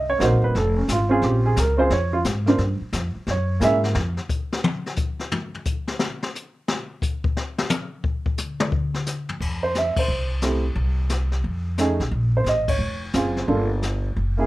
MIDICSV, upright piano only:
0, 0, Header, 1, 2, 480
1, 0, Start_track
1, 0, Tempo, 340522
1, 1731, Time_signature, 4, 2, 24, 8
1, 20388, End_track
2, 0, Start_track
2, 0, Title_t, "Upright piano"
2, 0, Program_c, 0, 0
2, 0, Note_on_c, 0, 75, 71
2, 136, Note_on_c, 0, 73, 89
2, 144, Note_off_c, 0, 75, 0
2, 258, Note_on_c, 0, 58, 68
2, 271, Note_on_c, 0, 60, 61
2, 283, Note_on_c, 0, 63, 55
2, 283, Note_on_c, 0, 66, 70
2, 293, Note_off_c, 0, 73, 0
2, 339, Note_on_c, 0, 72, 79
2, 618, Note_off_c, 0, 72, 0
2, 619, Note_on_c, 0, 71, 85
2, 754, Note_off_c, 0, 58, 0
2, 761, Note_off_c, 0, 60, 0
2, 767, Note_off_c, 0, 63, 0
2, 767, Note_off_c, 0, 66, 0
2, 775, Note_off_c, 0, 71, 0
2, 814, Note_on_c, 0, 69, 79
2, 1085, Note_on_c, 0, 61, 60
2, 1095, Note_off_c, 0, 69, 0
2, 1248, Note_off_c, 0, 61, 0
2, 1295, Note_on_c, 0, 65, 75
2, 1540, Note_on_c, 0, 60, 80
2, 1541, Note_off_c, 0, 65, 0
2, 1550, Note_on_c, 0, 61, 78
2, 1562, Note_on_c, 0, 65, 84
2, 1566, Note_on_c, 0, 68, 94
2, 1728, Note_off_c, 0, 68, 0
2, 1751, Note_on_c, 0, 67, 75
2, 2044, Note_off_c, 0, 67, 0
2, 2053, Note_on_c, 0, 68, 81
2, 2166, Note_off_c, 0, 60, 0
2, 2172, Note_off_c, 0, 61, 0
2, 2178, Note_off_c, 0, 65, 0
2, 2212, Note_off_c, 0, 68, 0
2, 2246, Note_on_c, 0, 70, 73
2, 2497, Note_on_c, 0, 60, 69
2, 2507, Note_on_c, 0, 61, 64
2, 2514, Note_on_c, 0, 65, 69
2, 2525, Note_on_c, 0, 72, 89
2, 2529, Note_on_c, 0, 68, 76
2, 2532, Note_off_c, 0, 70, 0
2, 2662, Note_off_c, 0, 60, 0
2, 2667, Note_off_c, 0, 61, 0
2, 2671, Note_off_c, 0, 65, 0
2, 2678, Note_off_c, 0, 68, 0
2, 2688, Note_off_c, 0, 72, 0
2, 2711, Note_on_c, 0, 73, 81
2, 3004, Note_off_c, 0, 73, 0
2, 3004, Note_on_c, 0, 65, 79
2, 3105, Note_off_c, 0, 65, 0
2, 3471, Note_on_c, 0, 58, 76
2, 3495, Note_on_c, 0, 62, 71
2, 3495, Note_on_c, 0, 65, 72
2, 3514, Note_on_c, 0, 72, 75
2, 3629, Note_off_c, 0, 58, 0
2, 3641, Note_off_c, 0, 62, 0
2, 3641, Note_off_c, 0, 65, 0
2, 3651, Note_off_c, 0, 72, 0
2, 4659, Note_on_c, 0, 73, 72
2, 5073, Note_on_c, 0, 58, 73
2, 5083, Note_on_c, 0, 61, 63
2, 5084, Note_off_c, 0, 73, 0
2, 5092, Note_on_c, 0, 64, 61
2, 5101, Note_on_c, 0, 68, 74
2, 5136, Note_on_c, 0, 76, 103
2, 5310, Note_off_c, 0, 76, 0
2, 5563, Note_off_c, 0, 58, 0
2, 5568, Note_off_c, 0, 61, 0
2, 5573, Note_off_c, 0, 64, 0
2, 5577, Note_off_c, 0, 68, 0
2, 13576, Note_on_c, 0, 72, 75
2, 13732, Note_off_c, 0, 72, 0
2, 13786, Note_on_c, 0, 76, 77
2, 14060, Note_off_c, 0, 76, 0
2, 14082, Note_on_c, 0, 72, 71
2, 14509, Note_off_c, 0, 72, 0
2, 14686, Note_on_c, 0, 57, 57
2, 14689, Note_on_c, 0, 60, 56
2, 14705, Note_on_c, 0, 67, 62
2, 14710, Note_on_c, 0, 64, 52
2, 14968, Note_off_c, 0, 57, 0
2, 14970, Note_off_c, 0, 60, 0
2, 14978, Note_off_c, 0, 67, 0
2, 14980, Note_off_c, 0, 64, 0
2, 16612, Note_on_c, 0, 57, 72
2, 16620, Note_on_c, 0, 61, 62
2, 16632, Note_on_c, 0, 63, 67
2, 16638, Note_on_c, 0, 68, 75
2, 16892, Note_off_c, 0, 57, 0
2, 16896, Note_off_c, 0, 61, 0
2, 16902, Note_off_c, 0, 63, 0
2, 16905, Note_off_c, 0, 68, 0
2, 17433, Note_on_c, 0, 72, 74
2, 17582, Note_off_c, 0, 72, 0
2, 17598, Note_on_c, 0, 75, 79
2, 17888, Note_off_c, 0, 75, 0
2, 17891, Note_on_c, 0, 73, 73
2, 18334, Note_off_c, 0, 73, 0
2, 18517, Note_on_c, 0, 61, 54
2, 18520, Note_on_c, 0, 60, 57
2, 18529, Note_on_c, 0, 65, 60
2, 18546, Note_on_c, 0, 68, 68
2, 18986, Note_on_c, 0, 58, 61
2, 18987, Note_off_c, 0, 65, 0
2, 19000, Note_on_c, 0, 62, 58
2, 19005, Note_off_c, 0, 61, 0
2, 19007, Note_off_c, 0, 60, 0
2, 19009, Note_on_c, 0, 65, 55
2, 19014, Note_on_c, 0, 69, 70
2, 19019, Note_off_c, 0, 68, 0
2, 19280, Note_off_c, 0, 58, 0
2, 19287, Note_off_c, 0, 62, 0
2, 19291, Note_off_c, 0, 65, 0
2, 19294, Note_off_c, 0, 69, 0
2, 20261, Note_on_c, 0, 58, 71
2, 20269, Note_on_c, 0, 61, 63
2, 20276, Note_on_c, 0, 64, 64
2, 20295, Note_on_c, 0, 68, 79
2, 20388, Note_off_c, 0, 58, 0
2, 20388, Note_off_c, 0, 61, 0
2, 20388, Note_off_c, 0, 64, 0
2, 20388, Note_off_c, 0, 68, 0
2, 20388, End_track
0, 0, End_of_file